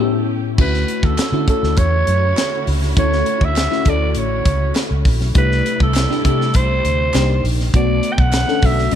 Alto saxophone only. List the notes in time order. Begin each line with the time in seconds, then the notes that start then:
Already playing: A4
0.61 B4
1.05 A4
1.50 A4
1.78 C#5
2.99 C#5
3.45 E5
3.90 D5
4.11 D5
4.18 C#5
5.38 B4
5.83 A4
6.26 A4
6.56 C5
7.76 D5
8.13 G5
8.20 F#5
8.66 E5